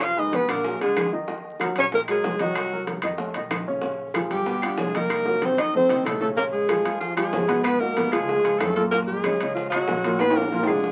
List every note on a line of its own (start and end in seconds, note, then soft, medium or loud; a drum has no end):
0.00 0.43 F1 medium
0.00 0.11 F3 medium
0.00 0.11 F4 medium
0.00 0.20 F4 medium
0.00 0.11 F5 medium
0.00 0.21 F5 loud
0.00 high bongo medium
0.00 high timbale medium
0.00 claves medium
0.16 0.43 G#3 medium
0.16 0.36 D#4 medium
0.16 0.43 G#4 medium
0.16 0.43 B4 medium
0.16 0.37 D#5 medium
0.16 high bongo soft
0.16 high conga soft
0.32 0.52 B3 medium
0.32 0.51 B4 medium
0.32 high bongo medium
0.32 high conga medium
0.32 high timbale medium
0.48 0.78 A#1 medium
0.48 0.61 D3 medium
0.48 0.81 A#3 medium
0.48 0.62 D4 medium
0.48 0.81 A#4 medium
0.48 0.62 D5 medium
0.48 high bongo soft
0.48 high conga soft
0.48 high timbale medium
0.48 claves medium
0.64 0.78 F#3 medium
0.64 0.78 F#4 medium
0.64 0.78 G#4 medium
0.64 high bongo medium
0.64 high conga soft
0.80 0.95 C#2 medium
0.80 1.07 D3 medium
0.80 1.11 G#3 medium
0.80 1.07 D4 medium
0.80 1.11 G#4 medium
0.80 1.07 D5 medium
0.80 high bongo soft
0.80 high conga soft
0.80 high timbale medium
0.96 1.70 D#2 medium
0.96 high bongo medium
0.96 low bongo medium
0.96 high conga medium
0.96 high timbale medium
0.96 claves medium
1.13 1.25 D#3 medium
1.13 1.26 D#4 medium
1.13 1.26 D#5 medium
1.13 high conga soft
1.28 1.54 D#3 medium
1.28 1.55 D#4 medium
1.28 1.55 D#5 medium
1.28 high bongo medium
1.28 high conga soft
1.45 high conga soft
1.60 1.86 F#3 medium
1.60 1.87 F#4 medium
1.60 1.87 A#4 medium
1.60 high bongo medium
1.60 high conga medium
1.60 high timbale medium
1.60 claves medium
1.76 2.20 A#1 medium
1.76 1.85 C#4 medium
1.76 high timbale medium
1.80 1.86 C#5 loud
1.92 2.05 D#3 medium
1.92 2.00 A#3 medium
1.92 2.05 D#4 medium
1.92 2.01 A#4 medium
1.92 2.06 D#5 medium
1.92 high bongo medium
1.92 high conga soft
2.08 2.34 F#3 medium
2.08 2.43 G#3 medium
2.08 2.34 F#4 medium
2.08 2.43 G#4 loud
2.08 2.35 A#4 medium
2.08 high timbale medium
2.08 claves medium
2.24 2.98 C2 medium
2.24 high bongo medium
2.24 low bongo medium
2.24 high conga medium
2.24 low timbale medium
2.39 2.66 D#3 medium
2.39 2.89 F#3 medium
2.39 2.66 D#4 medium
2.39 2.88 F#4 medium
2.39 2.66 D#5 medium
2.39 high conga medium
2.39 high timbale medium
2.55 high bongo medium
2.55 high conga soft
2.55 high timbale medium
2.55 claves medium
2.72 2.99 F#3 medium
2.72 2.98 F#4 medium
2.72 2.99 A#4 medium
2.72 high bongo soft
2.72 high conga soft
2.87 high bongo medium
2.87 high conga medium
2.87 high timbale medium
3.02 3.33 F2 medium
3.02 3.16 D#3 medium
3.02 3.17 D#4 medium
3.02 3.17 D#5 medium
3.02 high bongo soft
3.02 high conga soft
3.02 high timbale medium
3.02 claves medium
3.18 3.32 A3 medium
3.18 3.33 A4 medium
3.18 3.33 C#5 medium
3.18 high bongo medium
3.18 high conga soft
3.34 3.50 B1 medium
3.34 3.62 D#3 medium
3.34 3.61 D#4 medium
3.34 3.62 D#5 medium
3.34 high bongo soft
3.34 high conga soft
3.34 high timbale medium
3.51 4.25 A#1 medium
3.51 high bongo medium
3.51 low bongo medium
3.51 high conga medium
3.51 high timbale medium
3.51 claves medium
3.67 3.80 C#3 medium
3.67 3.81 C#4 medium
3.67 3.81 C#5 medium
3.67 high conga soft
3.82 4.09 C#3 medium
3.82 4.09 C#4 medium
3.82 4.09 C#5 medium
3.82 high bongo medium
3.82 high conga soft
4.00 high conga soft
4.14 4.41 F3 medium
4.14 4.41 F4 medium
4.14 4.41 G#4 medium
4.14 high bongo medium
4.14 high conga medium
4.14 high timbale medium
4.14 claves medium
4.31 4.75 G1 medium
4.31 4.81 G3 medium
4.31 4.82 G4 medium
4.31 high timbale medium
4.46 4.60 B2 medium
4.46 4.59 B3 medium
4.46 4.60 B4 medium
4.46 high bongo medium
4.46 high conga soft
4.62 4.89 D3 medium
4.62 4.89 D4 medium
4.62 4.89 F4 medium
4.62 high conga soft
4.62 high timbale medium
4.62 claves medium
4.78 5.52 C2 medium
4.78 4.98 G#3 medium
4.78 4.98 G#4 medium
4.78 high bongo medium
4.78 low bongo medium
4.78 high conga medium
4.78 low timbale medium
4.94 5.21 D#3 medium
4.94 5.45 A#3 medium
4.94 5.21 D#4 medium
4.94 5.46 A#4 loud
4.94 5.21 D#5 medium
4.94 high conga medium
4.94 high timbale medium
5.10 high bongo medium
5.10 high timbale medium
5.10 claves medium
5.25 5.52 F#3 medium
5.25 5.52 F#4 medium
5.25 5.53 A#4 medium
5.25 high bongo medium
5.25 high conga soft
5.41 5.62 C4 medium
5.41 5.61 C5 loud
5.41 high bongo loud
5.41 high conga medium
5.41 high timbale medium
5.57 5.87 F2 medium
5.57 5.71 D#3 medium
5.57 5.71 D#4 medium
5.57 5.75 D#4 medium
5.57 5.71 D#5 medium
5.57 5.75 D#5 medium
5.57 high conga soft
5.57 high timbale medium
5.57 claves medium
5.74 5.87 A3 medium
5.74 6.05 C4 medium
5.74 5.87 A4 medium
5.74 5.88 C5 medium
5.74 6.05 C5 loud
5.74 low bongo medium
5.74 high conga medium
5.89 6.04 C2 medium
5.89 6.16 D#3 medium
5.89 6.16 D#4 medium
5.89 6.16 D#5 medium
5.89 low bongo medium
5.89 low conga medium
5.89 high timbale medium
6.04 6.79 A#1 medium
6.04 6.21 A3 medium
6.04 6.20 A4 medium
6.04 low bongo medium
6.04 low conga medium
6.04 high timbale medium
6.04 low timbale medium
6.04 claves medium
6.21 6.35 C#3 medium
6.21 6.29 A3 medium
6.21 6.35 C#4 medium
6.21 6.28 A4 medium
6.21 6.35 C#5 medium
6.21 low bongo medium
6.21 low conga medium
6.36 6.64 C#3 medium
6.36 6.44 A#3 medium
6.36 6.64 C#4 medium
6.36 6.45 A#4 medium
6.36 6.64 C#5 medium
6.36 high bongo medium
6.36 high conga soft
6.52 6.97 G#3 medium
6.52 6.97 G#4 medium
6.52 high conga soft
6.69 6.82 F3 medium
6.69 6.83 F4 medium
6.69 6.83 G#4 medium
6.69 high bongo medium
6.69 high conga medium
6.69 high timbale medium
6.69 claves medium
6.85 7.30 F2 medium
6.85 7.11 F3 medium
6.85 7.11 F4 medium
6.85 7.11 G#4 medium
6.85 high timbale medium
7.00 7.15 F3 medium
7.00 7.16 F4 medium
7.00 high bongo medium
7.00 high conga soft
7.16 7.43 F3 medium
7.16 7.61 G#3 medium
7.16 7.43 F4 medium
7.16 7.61 G#4 medium
7.16 7.43 G#4 medium
7.16 high timbale medium
7.16 claves medium
7.33 8.07 G#2 medium
7.33 high bongo medium
7.33 low bongo medium
7.33 high conga medium
7.33 low timbale medium
7.48 7.75 B2 medium
7.48 7.75 B3 medium
7.48 7.75 B4 medium
7.48 high conga medium
7.48 high timbale medium
7.63 7.82 B3 medium
7.63 7.81 B4 medium
7.63 high bongo medium
7.63 high timbale medium
7.63 claves medium
7.79 7.94 D#3 medium
7.79 8.13 A#3 medium
7.79 7.94 D#4 medium
7.79 7.94 F#4 medium
7.79 8.14 A#4 loud
7.79 high bongo soft
7.96 8.10 B2 medium
7.96 8.10 B3 medium
7.96 8.10 B4 medium
7.96 high bongo medium
7.96 high conga medium
7.96 high timbale medium
8.12 8.57 C#2 medium
8.12 8.38 F3 medium
8.12 8.61 G#3 medium
8.12 8.39 F4 medium
8.12 8.61 G#4 medium
8.12 8.39 G#4 medium
8.12 high bongo soft
8.12 high conga soft
8.12 low conga medium
8.12 high timbale medium
8.12 claves medium
8.29 high bongo medium
8.29 high conga soft
8.29 low conga medium
8.44 8.70 F3 medium
8.44 8.71 F4 medium
8.44 8.71 G#4 medium
8.44 high bongo soft
8.44 high conga soft
8.44 high timbale medium
8.59 9.35 F#2 loud
8.59 8.75 A3 medium
8.59 8.75 A4 medium
8.59 high bongo medium
8.59 low bongo medium
8.59 high conga medium
8.59 high timbale medium
8.59 low timbale medium
8.59 claves medium
8.75 8.89 A#2 medium
8.75 8.83 A3 medium
8.75 8.89 A#3 medium
8.75 8.83 A4 loud
8.75 8.90 A#4 medium
8.91 9.19 A#2 medium
8.91 8.99 A#3 medium
8.91 9.19 A#3 medium
8.91 8.99 A#4 loud
8.91 9.19 A#4 medium
8.91 high bongo medium
9.06 9.52 G#3 medium
9.06 9.52 G#4 medium
9.06 high conga soft
9.24 9.38 C#3 medium
9.24 9.38 C#4 medium
9.24 9.38 D#4 medium
9.24 high bongo medium
9.24 high conga medium
9.24 high timbale medium
9.24 claves medium
9.40 9.85 C#2 medium
9.40 9.68 C#3 medium
9.40 9.68 C#4 medium
9.40 9.68 D#4 medium
9.40 high timbale medium
9.54 9.69 F3 medium
9.54 9.69 F4 medium
9.54 high bongo medium
9.54 high conga soft
9.70 10.20 F#3 medium
9.70 10.21 F#4 loud
9.70 high conga soft
9.70 high timbale medium
9.70 claves medium
9.74 9.99 C#3 medium
9.74 10.00 C#4 medium
9.74 10.00 D#4 medium
9.88 10.62 A#1 loud
9.88 high bongo medium
9.88 low bongo medium
9.88 high conga medium
9.88 low timbale medium
10.04 10.30 A#2 medium
10.04 10.31 A#3 medium
10.04 10.31 A#4 medium
10.04 high conga medium
10.04 high timbale medium
10.19 10.36 B3 medium
10.19 10.37 B4 loud
10.19 high bongo medium
10.19 high timbale medium
10.19 claves medium
10.31 high timbale loud
10.35 10.49 D3 medium
10.35 10.69 A#3 medium
10.35 10.50 D4 medium
10.35 10.50 F4 medium
10.35 10.69 A#4 medium
10.35 high bongo soft
10.35 high conga soft
10.42 low timbale medium
10.52 10.66 A#2 medium
10.52 10.66 A#3 medium
10.52 10.66 A#4 medium
10.52 high bongo medium
10.52 high conga medium
10.63 high timbale medium
10.67 10.92 F2 medium
10.67 10.92 D3 medium
10.67 10.92 G#3 medium
10.67 10.92 D4 medium
10.67 10.92 F4 medium
10.67 10.92 G#4 loud
10.67 high bongo soft
10.67 high conga soft
10.67 low conga medium
10.67 claves medium
10.84 high bongo medium
10.84 high conga soft